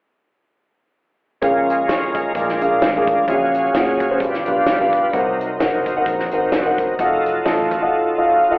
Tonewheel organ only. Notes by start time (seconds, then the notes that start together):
1.42 G#3 C#4 F4 A#4
2.35 G#3 D4 F4 A#4
3.28 F3 C#4 G#4 F5
3.34 F#3
4.20 G3 D4 F4 A4
4.26 B4
5.12 F#3 C4 C#4 A#4
5.18 D#4
6.54 F#4
6.80 A#4
6.99 F#3 D#4 F4 A4
8.39 F5